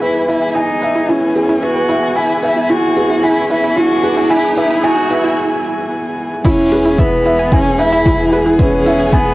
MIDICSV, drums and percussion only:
0, 0, Header, 1, 2, 480
1, 0, Start_track
1, 0, Key_signature, 4, "major"
1, 0, Tempo, 535714
1, 18, Time_signature, 4, 2, 24, 8
1, 8370, End_track
2, 0, Start_track
2, 0, Title_t, "Drums"
2, 256, Note_on_c, 9, 82, 56
2, 346, Note_off_c, 9, 82, 0
2, 735, Note_on_c, 9, 82, 61
2, 824, Note_off_c, 9, 82, 0
2, 1216, Note_on_c, 9, 82, 61
2, 1305, Note_off_c, 9, 82, 0
2, 1697, Note_on_c, 9, 82, 56
2, 1787, Note_off_c, 9, 82, 0
2, 2172, Note_on_c, 9, 82, 63
2, 2262, Note_off_c, 9, 82, 0
2, 2655, Note_on_c, 9, 82, 62
2, 2745, Note_off_c, 9, 82, 0
2, 3137, Note_on_c, 9, 82, 64
2, 3226, Note_off_c, 9, 82, 0
2, 3614, Note_on_c, 9, 82, 58
2, 3704, Note_off_c, 9, 82, 0
2, 4096, Note_on_c, 9, 82, 68
2, 4186, Note_off_c, 9, 82, 0
2, 4574, Note_on_c, 9, 82, 66
2, 4664, Note_off_c, 9, 82, 0
2, 5776, Note_on_c, 9, 36, 103
2, 5780, Note_on_c, 9, 49, 102
2, 5780, Note_on_c, 9, 82, 33
2, 5866, Note_off_c, 9, 36, 0
2, 5870, Note_off_c, 9, 49, 0
2, 5870, Note_off_c, 9, 82, 0
2, 6018, Note_on_c, 9, 82, 71
2, 6108, Note_off_c, 9, 82, 0
2, 6139, Note_on_c, 9, 82, 40
2, 6228, Note_off_c, 9, 82, 0
2, 6257, Note_on_c, 9, 36, 100
2, 6259, Note_on_c, 9, 82, 33
2, 6347, Note_off_c, 9, 36, 0
2, 6349, Note_off_c, 9, 82, 0
2, 6500, Note_on_c, 9, 82, 75
2, 6589, Note_off_c, 9, 82, 0
2, 6621, Note_on_c, 9, 82, 42
2, 6711, Note_off_c, 9, 82, 0
2, 6737, Note_on_c, 9, 36, 106
2, 6740, Note_on_c, 9, 82, 31
2, 6827, Note_off_c, 9, 36, 0
2, 6830, Note_off_c, 9, 82, 0
2, 6978, Note_on_c, 9, 82, 75
2, 7068, Note_off_c, 9, 82, 0
2, 7099, Note_on_c, 9, 82, 42
2, 7189, Note_off_c, 9, 82, 0
2, 7217, Note_on_c, 9, 36, 110
2, 7218, Note_on_c, 9, 82, 31
2, 7307, Note_off_c, 9, 36, 0
2, 7308, Note_off_c, 9, 82, 0
2, 7457, Note_on_c, 9, 82, 70
2, 7546, Note_off_c, 9, 82, 0
2, 7580, Note_on_c, 9, 82, 42
2, 7669, Note_off_c, 9, 82, 0
2, 7698, Note_on_c, 9, 36, 114
2, 7699, Note_on_c, 9, 82, 32
2, 7787, Note_off_c, 9, 36, 0
2, 7789, Note_off_c, 9, 82, 0
2, 7940, Note_on_c, 9, 82, 82
2, 8030, Note_off_c, 9, 82, 0
2, 8059, Note_on_c, 9, 82, 42
2, 8148, Note_off_c, 9, 82, 0
2, 8177, Note_on_c, 9, 36, 96
2, 8179, Note_on_c, 9, 82, 36
2, 8267, Note_off_c, 9, 36, 0
2, 8268, Note_off_c, 9, 82, 0
2, 8370, End_track
0, 0, End_of_file